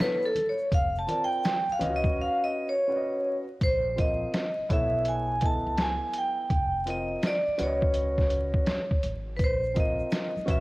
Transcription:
0.00 B3 E4 A4 B4 C#5, snare, closed hi-hat
0.22 A4, shaker
0.35 closed hi-hat, high conga, low conga, shaker
0.49 C#5
0.58 shaker
0.72 F1 F5, kick, closed hi-hat, shaker
0.96 A5, shaker
1.07 C4 F4 A#4 D5, closed hi-hat, low conga, shaker
1.24 G5
1.32 shaker
1.43 snare, closed hi-hat, shaker
1.69 F5, muted upright bass stroke, shaker
1.79 C#2 C#4 F4 B4 D#5, closed hi-hat, low conga, shaker
1.86 F#4
1.96 D#5
2.04 kick, high conga, shaker
2.22 F5
2.44 D#5
2.69 C#5
2.88 C#4 F#4 B4 D5
2.96 D#5
3.61 A#1 C5, kick, closed hi-hat
3.96 C4 F4 A#4 D#5, kick, closed hi-hat
4.00 D#5
4.34 snare, closed hi-hat
4.58 muted upright bass stroke
4.69 B1 B3 E4 A4 C#5 E5, kick, closed hi-hat
5.05 G#5, closed hi-hat
5.41 B3 E4 A4 D#5, kick, closed hi-hat
5.45 A5
5.66 C#2
5.77 snare, closed hi-hat
5.82 G#5
6.13 closed hi-hat
6.18 G5
6.50 F1, kick, closed hi-hat
6.86 C4 F4 A#4 D#5, closed hi-hat
6.90 D#5
7.23 snare, closed hi-hat
7.27 D5
7.47 muted upright bass stroke
7.58 C#2 C#4 F#4 B4 D5, closed hi-hat
7.63 C#5 D#5
7.82 kick
7.94 closed hi-hat
8.18 kick, snare
8.30 closed hi-hat
8.54 kick
8.66 snare, closed hi-hat
8.91 kick
9.03 G#1, closed hi-hat
9.37 A#1 B4, kick, closed hi-hat, shaker
9.44 C5
9.63 shaker
9.74 C4 F4 A#4 D#5, kick, closed hi-hat, low conga, shaker
9.80 D#5
9.99 shaker
10.11 snare, closed hi-hat, shaker
10.36 muted upright bass stroke, high conga, shaker
10.46 B1 C#4 F#4 B4 E5, kick, closed hi-hat, low conga, shaker
10.50 E5

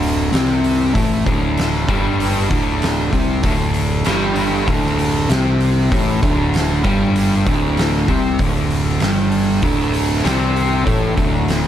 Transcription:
Already playing: D1 D2 D3
0.02 open hi-hat
0.32 C2 C3 C4, snare, open hi-hat
0.64 open hi-hat
0.94 A1 A2 A3, kick, open hi-hat
1.25 D1 D2 D3, kick, open hi-hat
1.58 snare, open hi-hat
1.88 G1 G2 G3, kick, open hi-hat
2.20 open hi-hat
2.50 D1 D2 D3, kick, open hi-hat
2.82 snare, open hi-hat
3.12 C2 C3 C4, kick, open hi-hat
3.43 D1 D2 D3, kick, open hi-hat
3.74 open hi-hat
4.05 G1 G2 G3, snare, open hi-hat
4.36 open hi-hat
4.68 D1 D2 D3, kick, open hi-hat
4.85 snare
4.99 open hi-hat
5.29 C2 C3 C4, snare, open hi-hat
5.60 open hi-hat
5.91 A1 A2 A3, kick, open hi-hat
6.22 D1 D2 D3, kick, open hi-hat
6.54 snare, open hi-hat
6.84 G1 G2 G3, kick, open hi-hat
7.16 open hi-hat
7.46 D1 D2 D3, kick, open hi-hat
7.77 snare, open hi-hat
8.08 C2 C3 C4, kick, open hi-hat
8.39 D1 D2 D3, kick, open hi-hat
8.70 open hi-hat
9.00 G1 G2 G3, snare, open hi-hat
9.32 open hi-hat
9.62 D1 D2 D3, kick, open hi-hat
9.94 open hi-hat
10.24 C2 C3 C4, snare, open hi-hat
10.56 open hi-hat
10.85 A1 A2 A3, kick, open hi-hat
11.16 D1 D2 D3, kick, open hi-hat
11.48 snare, open hi-hat

